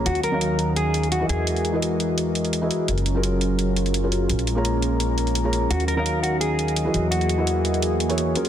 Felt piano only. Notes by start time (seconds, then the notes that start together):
0.32 D#3 D#4 F#4 C#5 F5
1.20 E3 E4 F#4 G#4 A#4 D#5
1.73 E3 E4 F#4 G#4 A#4 D#5
2.62 E3 E4 F#4 G#4 A#4 D#5
3.14 F#3 C#4 F4 G#4 A#4
4.03 F#3 C#4 F4 G#4 A#4
4.55 A#3 F4 G#4 C#5 A#5
5.44 A#3 F4 G#4 C#5 A#5
5.96 D#3 D#4 F#4 C#5 F5
6.85 E3 E4 F#4 G#4 A#4 D#5
7.37 E3 E4 F#4 G#4 A#4 D#5
8.09 E3 E4 F#4 G#4 A#4 C#5
8.35 F#3 C#4 F4 G#4 A#4